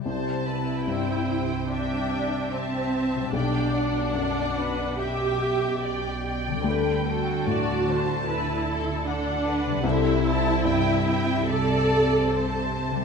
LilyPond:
<<
  \new Staff \with { instrumentName = "Violin section" } { \time 4/4 \key c \lydian \tempo 4 = 74 << { a''4 g''4 g''4 a''4 | g''8 fis''4. g''4 g''4~ | g''4 a''2 fis''4 | e''8 a''8 g''8 g''8 a''4 a''4 | } \\ { c''8 b'8 c''4 e''4 e''4 | d''4 d''8 b'8 e''4 d''8 d''8 | b'8 a'8 d''8 c''8 b'8 a'8 a'8 b'8 | c''4 e''4 d''4 c''4 | } >> }
  \new Staff \with { instrumentName = "Viola section" } { \time 4/4 \key c \lydian r8 e'4. d'4 c'4 | d'2 g'4. r8 | r8 fis'4. e'4 d'4 | e'2 a'4. r8 | }
  \new Staff \with { instrumentName = "Harp" } { \time 4/4 \key c \lydian <c g c' g'>1 | <b, g d' g'>1 | <d g c' a'>1 | <c g c' a'>1 | }
  \new Staff \with { instrumentName = "Cello section" } { \clef bass \time 4/4 \key c \lydian c1 | b,1 | d1 | c1 | }
  \new Staff \with { instrumentName = "Grand piano" } { \clef bass \time 4/4 \key c \lydian c,4 g,2. | b,,4 fis,2. | d,4 a,2. | c,4 g,2. | }
  \new Staff \with { instrumentName = "Double bass section" } { \clef bass \time 4/4 \key c \lydian c,1 | b,,1 | d,1 | c,1 | }
>>